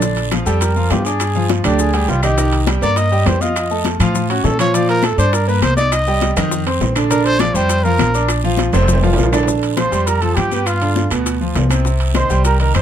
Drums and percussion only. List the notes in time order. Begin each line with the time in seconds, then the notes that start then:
0.02 high bongo, high timbale, long guiro, maracas
0.17 high bongo, high timbale, maracas
0.31 high bongo, high conga, high timbale, short guiro, claves, maracas
0.46 high bongo, high conga, short guiro, maracas
0.61 high bongo, high conga, high timbale, long guiro, maracas
0.76 high conga, maracas
0.90 high bongo, low bongo, high conga, high timbale, low timbale, short guiro, claves, maracas
1.05 high bongo, short guiro, maracas
1.20 high bongo, high conga, high timbale, long guiro, claves, maracas
1.35 high bongo, high conga, maracas
1.49 high bongo, high conga, high timbale, short guiro, maracas
1.64 high bongo, high conga, low conga, high timbale, short guiro, claves, maracas
1.79 high bongo, high conga, long guiro, maracas
1.94 high conga, high timbale, maracas
2.08 high bongo, low bongo, high conga, low timbale, short guiro, maracas
2.23 high bongo, high conga, high timbale, short guiro, claves, maracas
2.38 high bongo, high conga, high timbale, long guiro, maracas
2.52 high bongo, high conga, high timbale, maracas
2.67 high bongo, high conga, high timbale, short guiro, claves, maracas
2.82 high bongo, high conga, short guiro, maracas
2.96 high bongo, high conga, high timbale, long guiro, maracas
3.12 high conga, maracas
3.26 high bongo, low bongo, high conga, high timbale, low timbale, short guiro, claves, maracas
3.41 high bongo, high conga, short guiro, maracas
3.56 high bongo, high timbale, long guiro, claves, maracas
3.70 high bongo, high conga, maracas
3.85 high bongo, high conga, high timbale, short guiro, maracas
4.00 high bongo, high conga, low conga, high timbale, short guiro, claves, maracas
4.15 high bongo, high conga, low conga, long guiro, maracas
4.29 high conga, high timbale, maracas
4.44 high bongo, low bongo, high conga, low timbale, short guiro, maracas
4.59 high bongo, high conga, high timbale, short guiro, claves, maracas
4.74 high bongo, high timbale, long guiro, maracas
4.88 high bongo, high conga, high timbale, maracas
5.03 high bongo, high conga, high timbale, short guiro, claves, maracas
5.18 high bongo, high conga, short guiro, maracas
5.32 high bongo, high conga, high timbale, long guiro, maracas
5.47 high conga, maracas
5.62 high bongo, low bongo, high conga, high timbale, short guiro, claves, maracas
5.77 high bongo, high conga, short guiro, maracas
5.92 high bongo, high conga, high timbale, long guiro, claves, maracas
6.07 high bongo, high conga, maracas
6.21 high bongo, high conga, high timbale, short guiro, maracas
6.36 high bongo, high conga, low conga, high timbale, short guiro, claves, maracas
6.51 high bongo, high conga, long guiro, maracas
6.66 high conga, high timbale, maracas
6.81 high bongo, low bongo, high conga, low timbale, short guiro, maracas
6.96 high bongo, high conga, high timbale, short guiro, claves, maracas
7.11 high bongo, high conga, high timbale, long guiro, maracas
7.25 high bongo, high conga, high timbale, maracas
7.40 high bongo, high conga, high timbale, short guiro, claves, maracas
7.55 high bongo, high conga, short guiro, maracas
7.69 high bongo, high conga, high timbale, long guiro, maracas
7.84 high conga, maracas
7.98 high bongo, low bongo, high conga, high timbale, short guiro, claves, maracas
8.14 high bongo, short guiro, maracas
8.28 high bongo, high conga, high timbale, long guiro, claves, maracas
8.43 high bongo, high conga, maracas
8.57 high bongo, high conga, high timbale, short guiro, maracas
8.72 high bongo, high conga, low conga, high timbale, short guiro, claves, maracas
8.83 high timbale
8.88 high bongo, high conga, low conga, long guiro, maracas
8.93 low timbale
9.02 high conga, low timbale, maracas
9.13 low timbale
9.18 high bongo, low bongo, high conga, short guiro, maracas
9.23 low timbale
9.33 high bongo, high conga, low timbale, short guiro, claves, maracas
9.43 low timbale
9.48 high bongo, high conga, long guiro, maracas
9.63 high conga, high timbale, maracas
9.77 high bongo, high conga, high timbale, short guiro, claves, maracas
9.92 high conga, short guiro, maracas
10.07 high bongo, high conga, high timbale, long guiro, maracas
10.22 high conga, high timbale, maracas
10.37 high bongo, low bongo, high conga, high timbale, short guiro, claves, maracas
10.52 high conga, short guiro, maracas
10.66 high bongo, high timbale, long guiro, claves, maracas
10.81 high bongo, high conga, high timbale, maracas
10.96 high bongo, high conga, short guiro, maracas
11.11 high bongo, high conga, high timbale, short guiro, claves, maracas
11.26 high bongo, high conga, high timbale, long guiro, maracas
11.40 high bongo, high conga, maracas
11.55 high bongo, low bongo, high conga, high timbale, low timbale, short guiro, maracas
11.70 high conga, high timbale, short guiro, claves, maracas
11.84 high bongo, high conga, long guiro, maracas
12.00 high conga, high timbale, maracas
12.14 high bongo, high conga, high timbale, short guiro, claves, maracas
12.29 high conga, short guiro, maracas
12.44 high bongo, high conga, high timbale, long guiro, maracas
12.59 high conga, high timbale, maracas
12.74 high bongo, low bongo, high conga, high timbale, short guiro, claves, maracas